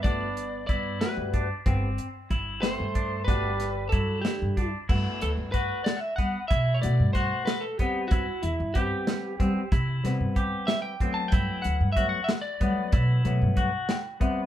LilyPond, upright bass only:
\new Staff \with { instrumentName = "Upright bass" } { \clef bass \time 5/8 \key g \major \tempo 4 = 93 g,,4 g,8 r16 g,8 r16 | g,,8 r8 g,,8. g,8. | g,,4 g,8 r16 g,8 r16 | g,16 r16 d,16 g,8 r8. g16 r16 |
b,8 b,16 g,8 r4 r16 | g,16 r16 e,16 g,8 r8. g16 r16 | c8 c16 g,8 r4 r16 | g,16 r16 d,16 g,8 r8. g16 r16 |
b,8 b,16 g,8 r4 r16 | }